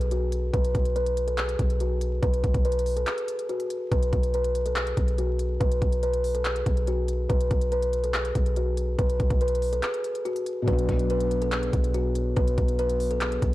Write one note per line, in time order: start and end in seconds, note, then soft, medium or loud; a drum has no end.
0.00 0.51 B1 loud
0.00 closed hi-hat medium
0.11 0.51 F#4 medium
0.11 closed hi-hat medium
0.32 closed hi-hat medium
0.53 0.74 B1 loud
0.53 0.93 B4 loud
0.53 kick loud
0.53 closed hi-hat medium
0.65 closed hi-hat medium
0.75 1.56 B1 loud
0.75 kick medium
0.75 closed hi-hat medium
0.85 closed hi-hat medium
0.96 1.26 B4 medium
0.96 closed hi-hat medium
1.06 closed hi-hat medium
1.17 closed hi-hat medium
1.27 1.36 A4 medium
1.27 closed hi-hat medium
1.38 1.78 G#4 medium
1.38 clap loud
1.38 closed hi-hat medium
1.49 closed hi-hat medium
1.59 2.20 B1 loud
1.59 kick medium
1.59 closed hi-hat medium
1.70 closed hi-hat medium
1.80 2.20 F#4 medium
1.80 closed hi-hat medium
2.01 closed hi-hat medium
2.23 2.43 B1 loud
2.23 2.62 B4 medium
2.23 kick loud
2.23 closed hi-hat medium
2.34 closed hi-hat medium
2.44 2.54 B1 loud
2.44 kick medium
2.44 closed hi-hat medium
2.54 3.05 B1 loud
2.54 kick medium
2.54 closed hi-hat medium
2.65 2.95 B4 medium
2.65 closed hi-hat medium
2.72 closed hi-hat medium
2.79 closed hi-hat medium
2.86 open hi-hat medium
2.96 3.05 A4 medium
2.96 closed hi-hat medium
3.06 3.47 G#4 medium
3.06 clap loud
3.06 closed hi-hat medium
3.18 closed hi-hat medium
3.28 closed hi-hat medium
3.39 closed hi-hat medium
3.49 3.89 F#4 medium
3.49 closed hi-hat soft
3.60 closed hi-hat medium
3.70 closed hi-hat medium
3.92 4.12 B1 loud
3.92 4.31 B4 medium
3.92 kick loud
3.92 closed hi-hat medium
4.03 closed hi-hat medium
4.13 4.94 B1 loud
4.13 kick medium
4.13 closed hi-hat medium
4.23 closed hi-hat medium
4.34 4.64 B4 medium
4.34 closed hi-hat medium
4.44 closed hi-hat medium
4.55 closed hi-hat medium
4.66 4.74 A4 medium
4.66 closed hi-hat medium
4.75 5.16 G#4 medium
4.75 clap loud
4.75 closed hi-hat medium
4.87 closed hi-hat medium
4.97 5.58 B1 loud
4.97 kick medium
4.97 closed hi-hat medium
5.08 closed hi-hat medium
5.18 5.58 F#4 medium
5.18 closed hi-hat medium
5.39 closed hi-hat medium
5.60 5.81 B1 loud
5.60 6.00 B4 medium
5.60 kick loud
5.60 closed hi-hat medium
5.72 closed hi-hat medium
5.82 6.63 B1 loud
5.82 kick medium
5.82 closed hi-hat medium
5.92 closed hi-hat medium
6.03 6.33 B4 medium
6.03 closed hi-hat medium
6.13 closed hi-hat medium
6.24 open hi-hat medium
6.34 6.43 A4 medium
6.34 closed hi-hat medium
6.45 6.85 G#4 medium
6.45 clap loud
6.45 closed hi-hat medium
6.56 closed hi-hat medium
6.66 7.27 B1 loud
6.66 kick medium
6.66 closed hi-hat medium
6.77 closed hi-hat medium
6.87 7.27 F#4 medium
6.87 closed hi-hat medium
7.08 closed hi-hat medium
7.29 7.50 B1 loud
7.29 7.69 B4 loud
7.29 kick loud
7.29 closed hi-hat medium
7.41 closed hi-hat medium
7.51 8.32 B1 loud
7.51 kick medium
7.51 closed hi-hat medium
7.61 closed hi-hat medium
7.72 8.02 B4 medium
7.72 closed hi-hat medium
7.82 closed hi-hat medium
7.93 closed hi-hat medium
8.03 8.12 A4 medium
8.03 closed hi-hat medium
8.14 8.54 G#4 medium
8.14 clap loud
8.14 closed hi-hat medium
8.25 closed hi-hat medium
8.35 8.96 B1 loud
8.35 kick medium
8.35 closed hi-hat medium
8.46 closed hi-hat medium
8.56 8.96 F#4 medium
8.56 closed hi-hat medium
8.77 closed hi-hat medium
8.99 9.19 B1 loud
8.99 9.38 B4 medium
8.99 kick loud
8.99 closed hi-hat medium
9.10 closed hi-hat medium
9.20 9.30 B1 loud
9.20 kick medium
9.20 closed hi-hat medium
9.30 9.81 B1 loud
9.30 kick medium
9.30 closed hi-hat medium
9.41 9.71 B4 medium
9.41 closed hi-hat medium
9.48 closed hi-hat medium
9.55 closed hi-hat medium
9.62 open hi-hat medium
9.72 9.81 A4 medium
9.72 closed hi-hat medium
9.83 10.23 G#4 medium
9.83 clap loud
9.83 closed hi-hat medium
9.94 closed hi-hat medium
10.04 closed hi-hat medium
10.15 closed hi-hat medium
10.25 10.65 F#4 medium
10.25 closed hi-hat soft
10.36 closed hi-hat medium
10.46 closed hi-hat medium
10.62 13.54 B2 medium
10.62 13.54 F#3 medium
10.68 10.88 B1 loud
10.68 13.54 D4 medium
10.68 11.07 B4 medium
10.68 kick loud
10.68 closed hi-hat medium
10.73 13.54 F#4 medium
10.79 closed hi-hat medium
10.89 11.70 B1 loud
10.89 kick medium
10.89 closed hi-hat medium
10.99 closed hi-hat medium
11.10 11.40 B4 medium
11.10 closed hi-hat medium
11.20 closed hi-hat medium
11.31 closed hi-hat medium
11.42 11.50 A4 medium
11.42 closed hi-hat medium
11.52 11.92 G#4 medium
11.52 clap loud
11.52 closed hi-hat medium
11.63 closed hi-hat medium
11.73 12.34 B1 loud
11.73 kick medium
11.73 closed hi-hat medium
11.84 closed hi-hat medium
11.94 12.34 F#4 medium
11.94 closed hi-hat medium
12.15 closed hi-hat medium
12.36 12.57 B1 loud
12.36 12.76 B4 medium
12.36 kick loud
12.36 closed hi-hat medium
12.48 closed hi-hat medium
12.58 13.39 B1 loud
12.58 kick medium
12.58 closed hi-hat medium
12.68 closed hi-hat medium
12.79 13.09 B4 medium
12.79 closed hi-hat medium
12.89 closed hi-hat medium
13.00 open hi-hat medium
13.11 13.19 A4 medium
13.11 closed hi-hat medium
13.21 13.54 G#4 medium
13.21 clap loud
13.21 closed hi-hat medium
13.32 closed hi-hat medium
13.42 13.54 B1 loud
13.42 kick medium
13.42 closed hi-hat medium